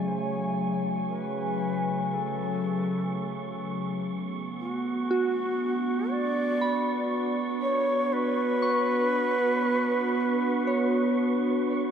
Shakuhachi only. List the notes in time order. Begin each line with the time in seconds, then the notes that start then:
0.07 C5
0.18 C#5
1.08 B4
2.09 B4
2.14 A4
4.61 F#4
6.11 D5
7.62 C#5
8.13 B4